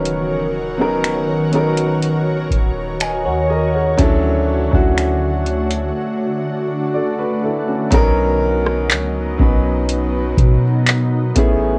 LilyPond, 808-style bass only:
\new Staff \with { instrumentName = "808-style bass" } { \clef bass \time 4/4 \key b \major \tempo 4 = 61 dis,,2~ dis,,8 dis,,8. dis,8. | d,8. d,4~ d,16 r2 | b,,4 cis,8 b,,4 b,4 a,,8 | }